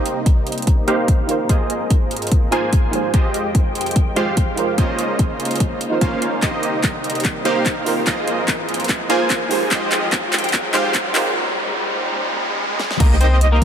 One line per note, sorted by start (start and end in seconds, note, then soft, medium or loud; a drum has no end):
0.00 1.48 C3 medium
0.00 1.48 G3 medium
0.00 0.85 A#3 medium
0.00 0.85 D#4 medium
0.00 1.48 D#4 medium
0.00 0.85 G4 medium
0.00 3.10 A#4 medium
0.00 0.85 C5 medium
0.00 0.85 D#5 medium
0.00 riser medium
0.06 closed hi-hat medium
0.26 kick medium
0.26 closed hi-hat medium
0.47 closed hi-hat soft
0.52 closed hi-hat medium
0.58 closed hi-hat soft
0.62 closed hi-hat medium
0.67 kick medium
0.67 closed hi-hat medium
0.87 1.47 A#3 medium
0.87 1.26 D#4 loud
0.87 1.47 D#4 medium
0.87 1.26 G4 medium
0.87 1.47 G4 medium
0.87 1.27 A#4 medium
0.87 1.47 C5 medium
0.87 1.27 C5 loud
0.87 1.47 F5 medium
0.87 closed hi-hat medium
1.08 kick loud
1.08 closed hi-hat medium
1.27 2.49 D#4 loud
1.27 2.50 F4 medium
1.27 2.50 A#4 medium
1.27 closed hi-hat medium
1.31 2.51 C5 loud
1.49 3.12 G#2 medium
1.49 3.12 F3 medium
1.49 2.50 A#3 medium
1.49 3.12 C4 medium
1.49 2.50 F4 medium
1.49 2.50 G#4 medium
1.49 2.50 C5 medium
1.49 2.50 D#5 medium
1.49 kick medium
1.49 closed hi-hat medium
1.70 closed hi-hat medium
1.90 kick medium
1.90 closed hi-hat medium
2.11 closed hi-hat soft
2.17 closed hi-hat medium
2.22 closed hi-hat soft
2.27 closed hi-hat medium
2.32 kick medium
2.32 closed hi-hat medium
2.51 3.12 A#3 medium
2.51 2.90 D#4 loud
2.51 2.91 F4 medium
2.51 3.11 F4 medium
2.51 3.11 G#4 medium
2.51 2.91 A#4 medium
2.51 3.12 C5 medium
2.51 2.91 C5 loud
2.51 3.11 G#5 loud
2.51 closed hi-hat medium
2.73 kick loud
2.73 closed hi-hat medium
2.91 4.14 G#3 medium
2.91 4.13 D#4 loud
2.91 4.14 G4 medium
2.91 closed hi-hat medium
2.95 4.15 C5 loud
3.14 4.76 F2 medium
3.14 4.77 D#3 medium
3.14 4.14 G#3 medium
3.14 6.39 G#3 medium
3.14 4.14 F4 medium
3.14 4.14 G4 medium
3.14 4.14 C5 medium
3.14 4.14 D#5 medium
3.14 4.76 G5 medium
3.14 kick medium
3.14 closed hi-hat medium
3.34 closed hi-hat medium
3.55 kick medium
3.55 closed hi-hat medium
3.75 closed hi-hat soft
3.81 closed hi-hat medium
3.86 closed hi-hat soft
3.91 closed hi-hat medium
3.96 kick medium
3.96 closed hi-hat medium
4.15 4.76 G#3 medium
4.15 4.55 G#3 medium
4.15 4.54 D#4 medium
4.15 4.76 F4 medium
4.15 4.55 G4 medium
4.15 4.76 G4 medium
4.15 4.76 C5 medium
4.15 4.56 C5 loud
4.15 4.76 F5 medium
4.15 closed hi-hat medium
4.37 kick medium
4.37 closed hi-hat medium
4.55 5.78 D#4 loud
4.55 5.78 F4 medium
4.55 5.79 A#4 medium
4.55 5.80 C5 loud
4.55 closed hi-hat medium
4.78 6.41 C#3 medium
4.78 5.79 A#3 medium
4.78 6.41 A#3 medium
4.78 5.79 C#4 medium
4.78 8.04 D#4 medium
4.78 5.79 F4 medium
4.78 6.41 F4 medium
4.78 5.79 C5 medium
4.78 6.41 C5 medium
4.78 5.79 D#5 medium
4.78 kick medium
4.78 closed hi-hat medium
4.99 closed hi-hat medium
5.19 kick loud
5.19 closed hi-hat medium
5.40 closed hi-hat soft
5.45 closed hi-hat medium
5.51 closed hi-hat soft
5.56 closed hi-hat medium
5.60 kick medium
5.60 closed hi-hat medium
5.81 closed hi-hat medium
5.90 6.40 D#4 loud
5.90 6.41 F4 medium
5.90 6.42 A#4 medium
5.90 6.42 C5 loud
6.01 6.40 A#3 medium
6.01 6.40 C#4 medium
6.01 6.40 F4 medium
6.01 6.40 C5 medium
6.01 6.40 F5 medium
6.01 kick loud
6.01 closed hi-hat medium
6.22 closed hi-hat medium
6.42 8.05 C3 medium
6.42 8.05 G3 medium
6.42 7.43 A#3 medium
6.42 7.43 D#4 medium
6.42 7.43 G4 medium
6.42 9.68 A#4 medium
6.42 7.43 C5 medium
6.42 7.43 D#5 medium
6.42 kick medium
6.42 clap soft
6.42 closed hi-hat medium
6.63 closed hi-hat medium
6.84 kick loud
6.84 clap soft
6.84 closed hi-hat medium
7.04 closed hi-hat soft
7.10 closed hi-hat medium
7.15 closed hi-hat soft
7.20 closed hi-hat medium
7.25 kick loud
7.25 clap medium
7.25 closed hi-hat medium
7.44 8.05 A#3 medium
7.44 7.83 D#4 loud
7.44 8.05 D#4 medium
7.44 7.84 G4 medium
7.44 8.05 G4 medium
7.44 7.84 A#4 medium
7.44 8.05 C5 medium
7.44 7.85 C5 loud
7.44 8.05 F5 medium
7.44 closed hi-hat medium
7.66 kick medium
7.66 clap medium
7.66 closed hi-hat medium
7.84 9.06 D#4 loud
7.84 9.07 F4 medium
7.84 9.08 A#4 medium
7.84 open hi-hat medium
7.88 9.08 C5 loud
8.07 9.70 G#2 medium
8.07 9.70 F3 medium
8.07 9.07 A#3 medium
8.07 9.70 C4 medium
8.07 9.07 F4 medium
8.07 9.07 G#4 medium
8.07 9.07 C5 medium
8.07 9.07 D#5 medium
8.07 kick loud
8.07 clap medium
8.07 closed hi-hat medium
8.28 closed hi-hat medium
8.48 kick medium
8.48 clap medium
8.48 closed hi-hat medium
8.69 closed hi-hat soft
8.74 closed hi-hat medium
8.80 closed hi-hat soft
8.84 closed hi-hat medium
8.89 kick loud
8.89 clap medium
8.89 closed hi-hat medium
9.09 9.69 A#3 loud
9.09 9.48 D#4 loud
9.09 9.48 F4 medium
9.09 9.69 F4 medium
9.09 9.69 G#4 medium
9.09 9.49 A#4 medium
9.09 9.69 C5 medium
9.09 9.49 C5 loud
9.09 9.69 G#5 loud
9.09 closed hi-hat medium
9.30 kick medium
9.30 clap medium
9.30 closed hi-hat medium
9.49 10.72 G#3 medium
9.49 10.71 D#4 loud
9.49 10.71 G4 loud
9.49 10.73 C5 loud
9.49 open hi-hat medium
9.71 11.34 F2 medium
9.71 11.34 D#3 medium
9.71 10.72 G#3 medium
9.71 12.97 G#3 medium
9.71 10.72 F4 medium
9.71 10.72 G4 medium
9.71 10.72 C5 medium
9.71 10.72 D#5 medium
9.71 11.34 G5 medium
9.71 kick medium
9.71 clap medium
9.71 closed hi-hat medium
9.92 clap medium
9.92 closed hi-hat medium
10.12 kick loud
10.12 clap medium
10.12 closed hi-hat medium
10.33 clap medium
10.33 closed hi-hat soft
10.38 closed hi-hat medium
10.44 closed hi-hat soft
10.49 closed hi-hat medium
10.53 kick loud
10.53 clap medium
10.53 closed hi-hat medium
10.73 11.33 G#3 medium
10.73 11.13 G#3 medium
10.73 11.12 D#4 loud
10.73 11.33 F4 medium
10.73 11.13 G4 medium
10.73 11.33 G4 medium
10.73 11.33 C5 medium
10.73 11.13 C5 loud
10.73 11.33 F5 medium
10.73 clap medium
10.73 closed hi-hat medium
10.95 kick loud
10.95 clap medium
10.95 closed hi-hat medium
11.13 11.35 D#4 loud
11.13 11.35 F4 medium
11.13 11.36 A#4 loud
11.13 11.37 C5 loud
11.13 clap medium
11.13 open hi-hat medium
11.36 12.98 C#3 medium
11.36 12.98 A#3 medium
11.36 12.98 D#4 medium
11.36 12.98 F4 medium
11.36 12.98 C5 medium
12.80 snare medium
12.91 snare medium
13.00 13.64 C2 loud
13.00 13.13 A#3 medium
13.00 13.64 A#3 medium
13.00 13.64 D#4 medium
13.00 13.64 G4 medium
13.00 13.13 A#4 medium
13.00 13.64 C5 medium
13.00 13.64 D#5 medium
13.00 kick loud
13.00 closed hi-hat medium
13.00 crash loud
13.20 13.39 C4 medium
13.20 13.39 C5 medium
13.20 closed hi-hat medium
13.41 closed hi-hat medium
13.52 13.64 A#3 medium
13.52 13.64 A#4 medium